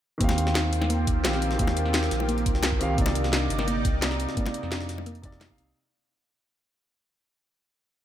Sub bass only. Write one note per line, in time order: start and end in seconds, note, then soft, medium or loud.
0.21 1.18 D#2 loud
1.16 1.26 C2 loud
1.25 1.58 A#1 medium
1.59 2.10 D#2 loud
2.11 2.45 A#1 medium
2.46 2.97 C2 medium
2.98 3.49 C2 medium
3.50 3.83 G1 medium
3.85 4.27 C2 medium
4.63 5.48 F2 medium
5.58 5.74 C2 loud